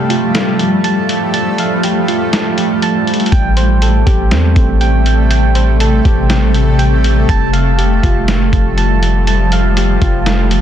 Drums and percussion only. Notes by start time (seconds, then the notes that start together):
0.10 closed hi-hat
0.35 snare, closed hi-hat
0.59 closed hi-hat
0.84 closed hi-hat
1.09 closed hi-hat
1.34 closed hi-hat
1.58 closed hi-hat
1.83 closed hi-hat
2.08 closed hi-hat
2.33 snare, closed hi-hat
2.58 closed hi-hat
2.82 closed hi-hat
3.07 closed hi-hat
3.14 closed hi-hat
3.20 closed hi-hat
3.26 closed hi-hat
3.32 kick, closed hi-hat
3.57 closed hi-hat
3.82 closed hi-hat
4.07 kick, closed hi-hat
4.31 snare, closed hi-hat
4.56 kick, closed hi-hat
4.81 closed hi-hat
5.06 closed hi-hat
5.31 closed hi-hat
5.55 closed hi-hat
5.80 closed hi-hat
6.05 kick, closed hi-hat
6.30 snare, closed hi-hat
6.54 closed hi-hat
6.79 closed hi-hat
7.04 closed hi-hat
7.29 kick, closed hi-hat
7.54 closed hi-hat
7.79 closed hi-hat
8.03 kick, closed hi-hat
8.28 snare, closed hi-hat
8.53 kick, closed hi-hat
8.78 closed hi-hat
9.03 closed hi-hat
9.27 closed hi-hat
9.52 closed hi-hat
9.77 closed hi-hat
10.02 kick, closed hi-hat
10.26 snare, closed hi-hat
10.51 closed hi-hat